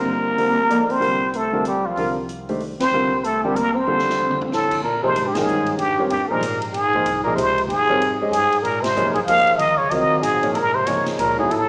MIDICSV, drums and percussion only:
0, 0, Header, 1, 2, 480
1, 0, Start_track
1, 0, Tempo, 318134
1, 86, Time_signature, 3, 2, 24, 8
1, 17635, End_track
2, 0, Start_track
2, 0, Title_t, "Drums"
2, 576, Note_on_c, 9, 46, 42
2, 726, Note_off_c, 9, 46, 0
2, 1063, Note_on_c, 9, 42, 48
2, 1214, Note_off_c, 9, 42, 0
2, 1354, Note_on_c, 9, 46, 32
2, 1505, Note_off_c, 9, 46, 0
2, 1538, Note_on_c, 9, 46, 38
2, 1689, Note_off_c, 9, 46, 0
2, 2015, Note_on_c, 9, 42, 46
2, 2166, Note_off_c, 9, 42, 0
2, 2488, Note_on_c, 9, 42, 49
2, 2639, Note_off_c, 9, 42, 0
2, 2975, Note_on_c, 9, 46, 39
2, 3125, Note_off_c, 9, 46, 0
2, 3453, Note_on_c, 9, 42, 48
2, 3604, Note_off_c, 9, 42, 0
2, 3753, Note_on_c, 9, 46, 34
2, 3904, Note_off_c, 9, 46, 0
2, 3928, Note_on_c, 9, 46, 42
2, 4079, Note_off_c, 9, 46, 0
2, 4226, Note_on_c, 9, 38, 67
2, 4229, Note_on_c, 9, 51, 66
2, 4377, Note_off_c, 9, 38, 0
2, 4380, Note_off_c, 9, 51, 0
2, 4892, Note_on_c, 9, 42, 50
2, 5043, Note_off_c, 9, 42, 0
2, 5372, Note_on_c, 9, 42, 54
2, 5523, Note_off_c, 9, 42, 0
2, 6013, Note_on_c, 9, 38, 42
2, 6164, Note_off_c, 9, 38, 0
2, 6178, Note_on_c, 9, 38, 64
2, 6329, Note_off_c, 9, 38, 0
2, 6331, Note_on_c, 9, 47, 58
2, 6482, Note_off_c, 9, 47, 0
2, 6497, Note_on_c, 9, 47, 64
2, 6648, Note_off_c, 9, 47, 0
2, 6659, Note_on_c, 9, 43, 74
2, 6810, Note_off_c, 9, 43, 0
2, 6820, Note_on_c, 9, 38, 60
2, 6971, Note_off_c, 9, 38, 0
2, 7110, Note_on_c, 9, 49, 64
2, 7111, Note_on_c, 9, 36, 72
2, 7261, Note_off_c, 9, 36, 0
2, 7261, Note_off_c, 9, 49, 0
2, 7782, Note_on_c, 9, 44, 51
2, 7782, Note_on_c, 9, 51, 62
2, 7933, Note_off_c, 9, 44, 0
2, 7933, Note_off_c, 9, 51, 0
2, 8069, Note_on_c, 9, 38, 71
2, 8072, Note_on_c, 9, 51, 60
2, 8220, Note_off_c, 9, 38, 0
2, 8223, Note_off_c, 9, 51, 0
2, 8263, Note_on_c, 9, 44, 54
2, 8414, Note_off_c, 9, 44, 0
2, 8545, Note_on_c, 9, 51, 43
2, 8696, Note_off_c, 9, 51, 0
2, 8729, Note_on_c, 9, 51, 57
2, 8880, Note_off_c, 9, 51, 0
2, 9208, Note_on_c, 9, 51, 58
2, 9358, Note_off_c, 9, 51, 0
2, 9694, Note_on_c, 9, 44, 59
2, 9694, Note_on_c, 9, 51, 74
2, 9845, Note_off_c, 9, 44, 0
2, 9845, Note_off_c, 9, 51, 0
2, 9982, Note_on_c, 9, 51, 47
2, 10133, Note_off_c, 9, 51, 0
2, 10171, Note_on_c, 9, 51, 59
2, 10322, Note_off_c, 9, 51, 0
2, 10463, Note_on_c, 9, 36, 63
2, 10614, Note_off_c, 9, 36, 0
2, 10649, Note_on_c, 9, 44, 56
2, 10649, Note_on_c, 9, 51, 63
2, 10800, Note_off_c, 9, 44, 0
2, 10800, Note_off_c, 9, 51, 0
2, 11136, Note_on_c, 9, 44, 58
2, 11136, Note_on_c, 9, 51, 67
2, 11287, Note_off_c, 9, 44, 0
2, 11287, Note_off_c, 9, 51, 0
2, 11435, Note_on_c, 9, 51, 43
2, 11586, Note_off_c, 9, 51, 0
2, 11617, Note_on_c, 9, 51, 55
2, 11767, Note_off_c, 9, 51, 0
2, 12094, Note_on_c, 9, 51, 58
2, 12245, Note_off_c, 9, 51, 0
2, 12571, Note_on_c, 9, 44, 59
2, 12571, Note_on_c, 9, 51, 70
2, 12721, Note_off_c, 9, 44, 0
2, 12721, Note_off_c, 9, 51, 0
2, 12861, Note_on_c, 9, 51, 44
2, 13012, Note_off_c, 9, 51, 0
2, 13046, Note_on_c, 9, 51, 56
2, 13197, Note_off_c, 9, 51, 0
2, 13334, Note_on_c, 9, 38, 84
2, 13337, Note_on_c, 9, 51, 64
2, 13485, Note_off_c, 9, 38, 0
2, 13488, Note_off_c, 9, 51, 0
2, 13524, Note_on_c, 9, 44, 53
2, 13675, Note_off_c, 9, 44, 0
2, 13811, Note_on_c, 9, 51, 44
2, 13815, Note_on_c, 9, 36, 60
2, 13962, Note_off_c, 9, 51, 0
2, 13966, Note_off_c, 9, 36, 0
2, 13999, Note_on_c, 9, 44, 55
2, 13999, Note_on_c, 9, 51, 74
2, 14150, Note_off_c, 9, 44, 0
2, 14150, Note_off_c, 9, 51, 0
2, 14288, Note_on_c, 9, 51, 43
2, 14438, Note_off_c, 9, 51, 0
2, 14472, Note_on_c, 9, 51, 60
2, 14623, Note_off_c, 9, 51, 0
2, 14956, Note_on_c, 9, 51, 58
2, 15107, Note_off_c, 9, 51, 0
2, 15436, Note_on_c, 9, 44, 56
2, 15436, Note_on_c, 9, 51, 73
2, 15587, Note_off_c, 9, 44, 0
2, 15587, Note_off_c, 9, 51, 0
2, 15734, Note_on_c, 9, 51, 46
2, 15884, Note_off_c, 9, 51, 0
2, 15917, Note_on_c, 9, 51, 57
2, 16067, Note_off_c, 9, 51, 0
2, 16393, Note_on_c, 9, 44, 65
2, 16393, Note_on_c, 9, 51, 75
2, 16544, Note_off_c, 9, 44, 0
2, 16544, Note_off_c, 9, 51, 0
2, 16689, Note_on_c, 9, 38, 54
2, 16692, Note_on_c, 9, 51, 49
2, 16840, Note_off_c, 9, 38, 0
2, 16843, Note_off_c, 9, 51, 0
2, 16882, Note_on_c, 9, 44, 61
2, 16882, Note_on_c, 9, 51, 69
2, 17033, Note_off_c, 9, 44, 0
2, 17033, Note_off_c, 9, 51, 0
2, 17366, Note_on_c, 9, 51, 59
2, 17517, Note_off_c, 9, 51, 0
2, 17635, End_track
0, 0, End_of_file